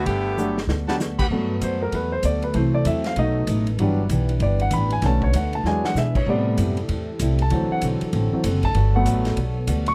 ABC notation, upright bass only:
X:1
M:4/4
L:1/8
Q:"Swing" 1/4=193
K:G
V:1 name="Upright bass" clef=bass
G,,,4 D,,4 | G,,2 F,,2 E,,2 D,,2 | C,,2 E,,2 B,,,2 A,,,2 | G,,,2 B,,,2 G,,,2 A,,,2 |
B,,,2 D,,2 E,,2 B,,2 | A,,2 F,,2 E,,2 C,,2 | D,, z B,,, z A,,, z F,,,2 | G,,,2 A,,,2 B,,,2 D,,2 |]